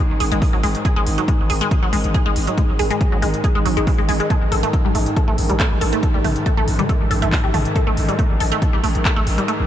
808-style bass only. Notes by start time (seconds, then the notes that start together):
0.10 G#1
0.20 G#1
0.32 G#1
0.53 G#1
0.64 G#1
0.96 G#1
1.07 G#1
1.39 G#1
1.50 G#1
1.83 G#1
1.93 G#1
2.04 G#1
2.26 G#1
2.36 G#1
2.69 G#1
2.79 G#1
3.12 G#1
3.22 G#1
3.55 G#1
3.66 G#1
3.77 G#1
3.98 G#1
4.09 G#1
4.42 A1
4.52 A1
4.85 A1
4.95 A1
5.28 A1
5.38 A1
5.50 A1
5.71 A1
5.81 A1
6.14 A1
6.25 A1
6.57 A1
6.68 A1
7.01 A1
7.11 A1
7.22 A1
7.44 A1
7.54 A1
7.87 A1
7.97 A1
8.30 A1
8.41 A1
8.73 A1
8.84 A1
8.95 A1
9.17 A1
9.27 A1
9.60 A1